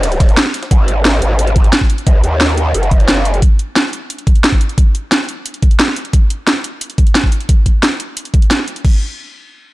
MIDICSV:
0, 0, Header, 1, 3, 480
1, 0, Start_track
1, 0, Key_signature, 5, "minor"
1, 0, Tempo, 338983
1, 1005, Time_signature, 4, 2, 24, 8
1, 13783, End_track
2, 0, Start_track
2, 0, Title_t, "Wobble bass"
2, 0, Program_c, 0, 39
2, 0, Note_on_c, 0, 32, 98
2, 507, Note_off_c, 0, 32, 0
2, 1006, Note_on_c, 0, 32, 96
2, 1707, Note_off_c, 0, 32, 0
2, 1727, Note_on_c, 0, 32, 99
2, 2427, Note_off_c, 0, 32, 0
2, 2926, Note_on_c, 0, 35, 93
2, 3147, Note_off_c, 0, 35, 0
2, 3167, Note_on_c, 0, 39, 99
2, 3867, Note_off_c, 0, 39, 0
2, 3887, Note_on_c, 0, 30, 99
2, 4827, Note_off_c, 0, 30, 0
2, 13783, End_track
3, 0, Start_track
3, 0, Title_t, "Drums"
3, 46, Note_on_c, 9, 51, 90
3, 47, Note_on_c, 9, 42, 91
3, 167, Note_off_c, 9, 42, 0
3, 167, Note_on_c, 9, 42, 38
3, 188, Note_off_c, 9, 51, 0
3, 286, Note_on_c, 9, 36, 107
3, 287, Note_off_c, 9, 42, 0
3, 287, Note_on_c, 9, 38, 44
3, 287, Note_on_c, 9, 42, 66
3, 287, Note_on_c, 9, 51, 71
3, 407, Note_off_c, 9, 42, 0
3, 407, Note_on_c, 9, 42, 37
3, 428, Note_off_c, 9, 36, 0
3, 428, Note_off_c, 9, 38, 0
3, 428, Note_off_c, 9, 51, 0
3, 526, Note_off_c, 9, 42, 0
3, 526, Note_on_c, 9, 38, 124
3, 526, Note_on_c, 9, 42, 96
3, 527, Note_off_c, 9, 38, 0
3, 527, Note_on_c, 9, 38, 116
3, 527, Note_on_c, 9, 51, 93
3, 646, Note_off_c, 9, 38, 0
3, 646, Note_on_c, 9, 38, 37
3, 668, Note_off_c, 9, 42, 0
3, 668, Note_off_c, 9, 51, 0
3, 766, Note_on_c, 9, 42, 70
3, 767, Note_on_c, 9, 51, 67
3, 788, Note_off_c, 9, 38, 0
3, 886, Note_off_c, 9, 42, 0
3, 886, Note_on_c, 9, 42, 38
3, 887, Note_on_c, 9, 38, 44
3, 908, Note_off_c, 9, 51, 0
3, 1006, Note_off_c, 9, 42, 0
3, 1006, Note_on_c, 9, 36, 126
3, 1006, Note_on_c, 9, 42, 89
3, 1028, Note_off_c, 9, 38, 0
3, 1148, Note_off_c, 9, 36, 0
3, 1148, Note_off_c, 9, 42, 0
3, 1247, Note_on_c, 9, 42, 67
3, 1388, Note_off_c, 9, 42, 0
3, 1487, Note_on_c, 9, 38, 118
3, 1487, Note_on_c, 9, 42, 85
3, 1628, Note_off_c, 9, 38, 0
3, 1628, Note_off_c, 9, 42, 0
3, 1726, Note_on_c, 9, 42, 64
3, 1868, Note_off_c, 9, 42, 0
3, 1966, Note_on_c, 9, 42, 89
3, 2086, Note_off_c, 9, 42, 0
3, 2086, Note_on_c, 9, 42, 36
3, 2205, Note_off_c, 9, 42, 0
3, 2205, Note_on_c, 9, 42, 65
3, 2206, Note_on_c, 9, 36, 109
3, 2326, Note_off_c, 9, 42, 0
3, 2326, Note_on_c, 9, 42, 38
3, 2348, Note_off_c, 9, 36, 0
3, 2445, Note_off_c, 9, 42, 0
3, 2445, Note_on_c, 9, 38, 120
3, 2445, Note_on_c, 9, 42, 88
3, 2566, Note_on_c, 9, 36, 60
3, 2587, Note_off_c, 9, 38, 0
3, 2587, Note_off_c, 9, 42, 0
3, 2686, Note_on_c, 9, 42, 68
3, 2708, Note_off_c, 9, 36, 0
3, 2806, Note_off_c, 9, 42, 0
3, 2806, Note_on_c, 9, 42, 36
3, 2926, Note_off_c, 9, 42, 0
3, 2926, Note_on_c, 9, 36, 120
3, 2926, Note_on_c, 9, 42, 89
3, 3067, Note_off_c, 9, 42, 0
3, 3068, Note_off_c, 9, 36, 0
3, 3166, Note_on_c, 9, 42, 63
3, 3307, Note_off_c, 9, 42, 0
3, 3406, Note_on_c, 9, 38, 115
3, 3406, Note_on_c, 9, 42, 86
3, 3547, Note_off_c, 9, 38, 0
3, 3547, Note_off_c, 9, 42, 0
3, 3646, Note_on_c, 9, 42, 60
3, 3787, Note_off_c, 9, 42, 0
3, 3886, Note_on_c, 9, 42, 89
3, 4006, Note_off_c, 9, 42, 0
3, 4006, Note_on_c, 9, 42, 35
3, 4126, Note_off_c, 9, 42, 0
3, 4126, Note_on_c, 9, 36, 108
3, 4126, Note_on_c, 9, 42, 59
3, 4246, Note_off_c, 9, 42, 0
3, 4246, Note_on_c, 9, 42, 36
3, 4268, Note_off_c, 9, 36, 0
3, 4366, Note_off_c, 9, 42, 0
3, 4366, Note_on_c, 9, 38, 123
3, 4366, Note_on_c, 9, 42, 85
3, 4486, Note_off_c, 9, 38, 0
3, 4486, Note_on_c, 9, 38, 39
3, 4508, Note_off_c, 9, 42, 0
3, 4606, Note_on_c, 9, 42, 64
3, 4628, Note_off_c, 9, 38, 0
3, 4727, Note_off_c, 9, 42, 0
3, 4727, Note_on_c, 9, 42, 35
3, 4846, Note_on_c, 9, 36, 115
3, 4847, Note_off_c, 9, 42, 0
3, 4847, Note_on_c, 9, 42, 91
3, 4987, Note_off_c, 9, 36, 0
3, 4988, Note_off_c, 9, 42, 0
3, 5087, Note_on_c, 9, 42, 61
3, 5228, Note_off_c, 9, 42, 0
3, 5327, Note_on_c, 9, 38, 114
3, 5327, Note_on_c, 9, 42, 83
3, 5468, Note_off_c, 9, 38, 0
3, 5468, Note_off_c, 9, 42, 0
3, 5567, Note_on_c, 9, 42, 63
3, 5708, Note_off_c, 9, 42, 0
3, 5806, Note_on_c, 9, 42, 84
3, 5927, Note_off_c, 9, 42, 0
3, 5927, Note_on_c, 9, 42, 36
3, 6046, Note_off_c, 9, 42, 0
3, 6046, Note_on_c, 9, 36, 101
3, 6046, Note_on_c, 9, 42, 60
3, 6166, Note_off_c, 9, 42, 0
3, 6166, Note_on_c, 9, 42, 36
3, 6187, Note_off_c, 9, 36, 0
3, 6286, Note_off_c, 9, 42, 0
3, 6286, Note_on_c, 9, 38, 111
3, 6286, Note_on_c, 9, 42, 89
3, 6406, Note_on_c, 9, 36, 55
3, 6428, Note_off_c, 9, 38, 0
3, 6428, Note_off_c, 9, 42, 0
3, 6526, Note_on_c, 9, 42, 63
3, 6547, Note_off_c, 9, 36, 0
3, 6647, Note_off_c, 9, 42, 0
3, 6647, Note_on_c, 9, 42, 35
3, 6766, Note_off_c, 9, 42, 0
3, 6766, Note_on_c, 9, 36, 111
3, 6766, Note_on_c, 9, 42, 86
3, 6907, Note_off_c, 9, 36, 0
3, 6908, Note_off_c, 9, 42, 0
3, 7006, Note_on_c, 9, 42, 62
3, 7148, Note_off_c, 9, 42, 0
3, 7246, Note_on_c, 9, 38, 115
3, 7246, Note_on_c, 9, 42, 91
3, 7388, Note_off_c, 9, 38, 0
3, 7388, Note_off_c, 9, 42, 0
3, 7486, Note_on_c, 9, 42, 62
3, 7627, Note_off_c, 9, 42, 0
3, 7726, Note_on_c, 9, 42, 92
3, 7846, Note_off_c, 9, 42, 0
3, 7846, Note_on_c, 9, 42, 36
3, 7965, Note_off_c, 9, 42, 0
3, 7965, Note_on_c, 9, 42, 63
3, 7966, Note_on_c, 9, 36, 96
3, 8085, Note_off_c, 9, 42, 0
3, 8085, Note_on_c, 9, 42, 35
3, 8107, Note_off_c, 9, 36, 0
3, 8205, Note_off_c, 9, 42, 0
3, 8205, Note_on_c, 9, 38, 118
3, 8205, Note_on_c, 9, 42, 85
3, 8326, Note_off_c, 9, 38, 0
3, 8326, Note_on_c, 9, 38, 35
3, 8347, Note_off_c, 9, 42, 0
3, 8446, Note_on_c, 9, 42, 69
3, 8467, Note_off_c, 9, 38, 0
3, 8566, Note_off_c, 9, 42, 0
3, 8566, Note_on_c, 9, 42, 35
3, 8686, Note_off_c, 9, 42, 0
3, 8686, Note_on_c, 9, 36, 109
3, 8686, Note_on_c, 9, 42, 94
3, 8827, Note_off_c, 9, 36, 0
3, 8827, Note_off_c, 9, 42, 0
3, 8926, Note_on_c, 9, 42, 68
3, 9067, Note_off_c, 9, 42, 0
3, 9166, Note_on_c, 9, 38, 102
3, 9166, Note_on_c, 9, 42, 92
3, 9308, Note_off_c, 9, 38, 0
3, 9308, Note_off_c, 9, 42, 0
3, 9406, Note_on_c, 9, 42, 66
3, 9547, Note_off_c, 9, 42, 0
3, 9646, Note_on_c, 9, 42, 92
3, 9766, Note_off_c, 9, 42, 0
3, 9766, Note_on_c, 9, 42, 37
3, 9886, Note_off_c, 9, 42, 0
3, 9886, Note_on_c, 9, 36, 99
3, 9886, Note_on_c, 9, 42, 68
3, 10006, Note_off_c, 9, 42, 0
3, 10006, Note_on_c, 9, 42, 37
3, 10027, Note_off_c, 9, 36, 0
3, 10126, Note_off_c, 9, 42, 0
3, 10126, Note_on_c, 9, 38, 112
3, 10126, Note_on_c, 9, 42, 92
3, 10245, Note_on_c, 9, 36, 55
3, 10268, Note_off_c, 9, 38, 0
3, 10268, Note_off_c, 9, 42, 0
3, 10366, Note_on_c, 9, 42, 69
3, 10387, Note_off_c, 9, 36, 0
3, 10485, Note_off_c, 9, 42, 0
3, 10485, Note_on_c, 9, 42, 36
3, 10605, Note_off_c, 9, 42, 0
3, 10605, Note_on_c, 9, 42, 94
3, 10606, Note_on_c, 9, 36, 109
3, 10747, Note_off_c, 9, 36, 0
3, 10747, Note_off_c, 9, 42, 0
3, 10845, Note_on_c, 9, 42, 68
3, 10846, Note_on_c, 9, 36, 57
3, 10987, Note_off_c, 9, 36, 0
3, 10987, Note_off_c, 9, 42, 0
3, 11086, Note_on_c, 9, 38, 114
3, 11086, Note_on_c, 9, 42, 90
3, 11227, Note_off_c, 9, 38, 0
3, 11227, Note_off_c, 9, 42, 0
3, 11326, Note_on_c, 9, 42, 67
3, 11467, Note_off_c, 9, 42, 0
3, 11565, Note_on_c, 9, 42, 92
3, 11686, Note_off_c, 9, 42, 0
3, 11686, Note_on_c, 9, 42, 38
3, 11805, Note_off_c, 9, 42, 0
3, 11805, Note_on_c, 9, 36, 105
3, 11805, Note_on_c, 9, 42, 66
3, 11926, Note_off_c, 9, 42, 0
3, 11926, Note_on_c, 9, 42, 37
3, 11947, Note_off_c, 9, 36, 0
3, 12046, Note_off_c, 9, 42, 0
3, 12046, Note_on_c, 9, 38, 115
3, 12046, Note_on_c, 9, 42, 95
3, 12165, Note_off_c, 9, 38, 0
3, 12165, Note_on_c, 9, 38, 34
3, 12187, Note_off_c, 9, 42, 0
3, 12285, Note_on_c, 9, 42, 68
3, 12307, Note_off_c, 9, 38, 0
3, 12406, Note_off_c, 9, 42, 0
3, 12406, Note_on_c, 9, 42, 37
3, 12525, Note_on_c, 9, 36, 113
3, 12526, Note_on_c, 9, 49, 84
3, 12547, Note_off_c, 9, 42, 0
3, 12667, Note_off_c, 9, 36, 0
3, 12667, Note_off_c, 9, 49, 0
3, 13783, End_track
0, 0, End_of_file